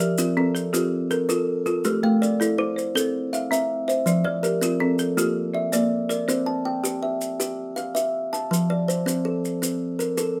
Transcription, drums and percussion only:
0.00 maracas medium
0.18 maracas medium
0.56 maracas medium
0.74 maracas medium
1.11 maracas medium
1.30 maracas medium
1.66 maracas soft
1.84 maracas medium
2.23 maracas soft
2.42 maracas medium
2.78 maracas medium
2.97 maracas medium
3.34 maracas medium
3.53 maracas medium
3.89 maracas medium
4.07 maracas medium
4.44 maracas medium
4.62 maracas medium
4.99 maracas medium
5.18 maracas medium
5.73 maracas medium
6.10 maracas medium
6.29 maracas medium
6.85 maracas medium
7.21 maracas medium
7.40 maracas medium
7.77 maracas medium
7.96 maracas medium
8.34 maracas medium
8.53 maracas medium
8.90 maracas medium
9.08 maracas medium
9.45 maracas medium
9.63 maracas medium
10.00 maracas medium
10.18 maracas medium

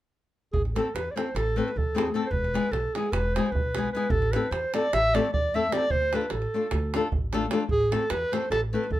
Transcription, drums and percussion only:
0.54 davul low medium
0.65 davul high soft
0.76 davul high medium
0.96 davul high medium
1.17 davul high medium
1.36 davul high medium
1.68 davul high soft
1.78 davul low medium
1.98 davul high medium
2.33 davul low medium
2.44 davul high soft
2.55 davul high medium
2.73 davul high medium
2.95 davul high medium
3.13 davul high medium
3.36 davul high medium
3.46 davul high soft
3.55 davul low medium
3.75 davul high medium
4.10 davul low medium
4.22 davul high soft
4.33 davul high medium
4.52 davul high medium
4.74 davul high medium
4.93 davul high medium
5.15 davul high medium
5.25 davul high soft
5.34 davul low medium
5.72 davul high medium
5.90 davul low medium
6.02 davul high soft
6.13 davul high medium
6.21 davul high soft
6.30 davul high medium
6.42 davul high soft
6.71 davul high medium
6.71 davul low medium
6.94 davul high medium
7.12 davul low medium
7.33 davul high medium
7.42 davul high soft
7.51 davul high medium
7.69 davul low medium
7.80 davul high soft
7.92 davul high medium
8.10 davul high medium
8.33 davul high medium
8.52 davul high medium
8.84 davul high soft
8.92 davul low medium

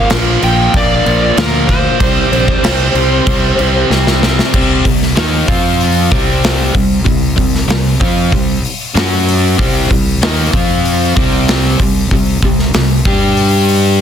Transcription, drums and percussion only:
0.10 snare loud
0.10 crash medium
0.42 crash medium
0.74 kick loud
0.74 crash medium
1.06 crash medium
1.37 snare loud
1.37 crash medium
1.69 kick medium
1.69 crash medium
2.00 kick loud
2.00 crash medium
2.33 crash medium
2.48 kick medium
2.64 snare loud
2.64 crash medium
2.95 crash medium
3.27 kick loud
3.27 crash medium
3.59 crash medium
3.91 snare medium
4.07 snare medium
4.23 snare loud
4.39 snare medium
4.54 kick loud
4.54 crash loud
4.85 kick loud
4.85 open hi-hat medium
5.02 snare soft
5.16 snare loud
5.16 open hi-hat medium
5.48 kick loud
5.48 open hi-hat medium
5.81 open hi-hat medium
6.12 kick loud
6.44 snare loud
6.44 open hi-hat medium
6.75 kick loud
6.75 open hi-hat medium
7.06 kick medium
7.06 open hi-hat medium
7.38 kick loud
7.38 open hi-hat medium
7.55 snare soft
7.70 snare loud
7.70 open hi-hat medium
8.01 kick loud
8.01 open hi-hat medium
8.32 kick medium
8.32 open hi-hat medium
8.65 open hi-hat medium
8.96 snare loud
8.96 open hi-hat medium
9.28 open hi-hat medium
9.59 kick loud
9.59 open hi-hat medium
9.91 kick loud
9.91 open hi-hat medium
10.22 snare loud
10.22 open hi-hat medium
10.53 kick loud
10.53 open hi-hat medium
10.85 open hi-hat medium
11.17 kick loud
11.48 snare loud
11.48 open hi-hat medium
11.80 kick medium
11.80 open hi-hat medium
12.11 kick medium
12.11 open hi-hat medium
12.42 kick medium
12.42 open hi-hat medium
12.59 snare soft
12.74 snare loud
12.74 open hi-hat medium
13.05 kick loud
13.05 open hi-hat medium
13.37 open hi-hat medium
13.68 open hi-hat medium

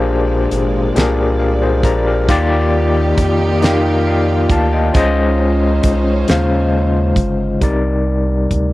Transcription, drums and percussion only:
0.51 closed hi-hat medium
0.96 snare loud
0.96 closed hi-hat medium
1.83 kick loud
1.83 closed hi-hat medium
2.29 kick loud
2.29 closed hi-hat medium
3.18 kick medium
3.18 closed hi-hat medium
3.62 snare loud
3.62 closed hi-hat medium
4.49 kick loud
4.49 closed hi-hat medium
4.94 kick loud
4.94 closed hi-hat medium
5.83 kick medium
5.83 closed hi-hat medium
6.28 snare loud
6.28 closed hi-hat medium
7.16 kick loud
7.16 closed hi-hat medium
7.61 kick medium
7.61 closed hi-hat medium
8.51 kick medium
8.51 closed hi-hat medium

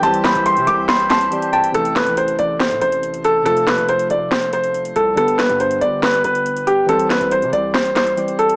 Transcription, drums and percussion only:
0.03 closed hi-hat medium
0.14 closed hi-hat medium
0.24 snare medium
0.24 clap medium
0.24 closed hi-hat medium
0.35 closed hi-hat medium
0.46 closed hi-hat medium
0.57 closed hi-hat soft
0.67 closed hi-hat medium
0.67 open hi-hat medium
0.89 snare loud
0.89 clap medium
0.89 closed hi-hat medium
0.99 closed hi-hat medium
1.10 snare medium
1.10 clap medium
1.10 closed hi-hat medium
1.21 closed hi-hat medium
1.32 closed hi-hat medium
1.42 closed hi-hat medium
1.53 closed hi-hat medium
1.64 closed hi-hat medium
1.74 closed hi-hat medium
1.85 closed hi-hat medium
1.96 snare medium
1.96 clap medium
1.96 closed hi-hat medium
2.06 closed hi-hat medium
2.17 closed hi-hat medium
2.28 closed hi-hat medium
2.39 closed hi-hat medium
2.60 snare loud
2.60 clap medium
2.60 closed hi-hat medium
2.71 closed hi-hat medium
2.81 closed hi-hat medium
2.92 closed hi-hat medium
3.03 closed hi-hat medium
3.14 closed hi-hat medium
3.24 closed hi-hat medium
3.46 closed hi-hat medium
3.57 closed hi-hat medium
3.67 snare medium
3.67 clap medium
3.67 closed hi-hat medium
3.78 closed hi-hat medium
3.88 closed hi-hat medium
3.99 closed hi-hat medium
4.10 closed hi-hat medium
4.32 snare loud
4.32 clap medium
4.32 closed hi-hat medium
4.42 closed hi-hat medium
4.53 closed hi-hat medium
4.64 closed hi-hat medium
4.74 closed hi-hat medium
4.85 closed hi-hat medium
4.96 closed hi-hat medium
5.17 closed hi-hat medium
5.28 closed hi-hat medium
5.39 snare medium
5.39 clap medium
5.39 closed hi-hat medium
5.49 closed hi-hat medium
5.60 closed hi-hat medium
5.71 closed hi-hat medium
5.81 closed hi-hat medium
6.03 snare loud
6.03 clap medium
6.03 closed hi-hat medium
6.14 closed hi-hat medium
6.24 closed hi-hat medium
6.35 closed hi-hat medium
6.46 closed hi-hat medium
6.57 closed hi-hat medium
6.67 closed hi-hat medium
6.89 closed hi-hat medium
6.99 closed hi-hat medium
7.10 snare medium
7.10 clap medium
7.10 closed hi-hat medium
7.21 closed hi-hat medium
7.31 closed hi-hat medium
7.42 closed hi-hat soft
7.53 closed hi-hat medium
7.53 open hi-hat medium
7.74 snare loud
7.74 clap medium
7.74 closed hi-hat medium
7.85 closed hi-hat medium
7.96 snare medium
7.96 clap medium
7.96 closed hi-hat medium
8.07 closed hi-hat medium
8.17 closed hi-hat medium
8.28 closed hi-hat medium
8.39 closed hi-hat medium
8.49 closed hi-hat medium

